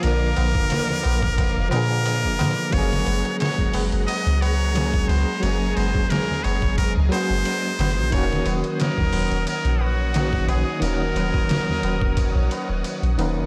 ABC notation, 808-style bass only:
X:1
M:4/4
L:1/16
Q:"Swing 16ths" 1/4=89
K:Gblyd
V:1 name="808-style bass" clef=bass
B,,,2 B,,, z3 B,,, B,,, z F,,, B,,3 F,,, B,, z | G,,,2 G,,, z3 G,,, G,,, z D,,4- D,, D,, z | G,,,2 G,,, z3 G,,, G,,, z D,, z G,,, z2 G,,, B,,, | E,,,2 E,,, z3 E,,, E,,, z B,,,4- B,,, B,,, z |
E,,,2 E,,, z3 E,,, E,,, z B,,, z E,,, z B,,, E,,, G,,, |]